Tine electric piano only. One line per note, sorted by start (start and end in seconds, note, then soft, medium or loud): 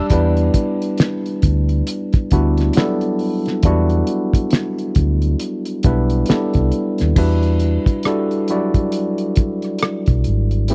0.00 0.11 G3 loud
0.00 0.12 D4 loud
0.11 1.75 G3 medium
0.11 1.75 B3 medium
0.11 1.75 D4 medium
0.11 1.76 E4 medium
0.11 1.76 B4 medium
2.32 2.72 G3 medium
2.32 2.73 B3 medium
2.32 2.73 D4 medium
2.32 2.73 E4 medium
2.32 2.73 F#4 medium
2.76 2.83 F#3 medium
2.76 3.58 B3 medium
2.76 3.58 D4 medium
2.76 3.58 E4 medium
2.76 3.59 A4 medium
2.83 3.61 G3 medium
3.65 5.28 G3 medium
3.65 5.28 B3 medium
3.65 5.28 D4 medium
3.65 5.29 E4 medium
3.65 5.29 F#4 medium
5.84 6.25 G3 medium
5.84 6.25 B3 medium
5.84 6.26 D4 medium
5.84 6.26 E4 medium
5.84 6.26 B4 medium
6.29 7.10 G3 medium
6.29 7.11 B3 medium
6.29 7.11 D4 medium
6.29 7.11 E4 medium
6.29 7.11 A4 medium
7.17 7.99 G3 medium
7.17 7.99 D4 medium
7.17 7.99 E4 medium
7.17 7.99 F#4 medium
7.17 8.00 B4 medium
8.06 8.46 G3 medium
8.06 8.46 D4 medium
8.06 8.47 E4 medium
8.06 8.47 F#4 medium
8.06 8.47 A4 medium
8.49 8.57 F#3 medium
8.49 10.13 D4 medium
8.49 10.14 E4 medium
8.49 10.14 F#4 medium
8.49 10.14 D5 medium
8.56 10.16 G3 medium
10.70 10.75 A3 medium
10.70 10.75 C4 medium
10.70 10.75 E4 medium
10.70 10.75 G4 medium
10.70 10.75 B4 medium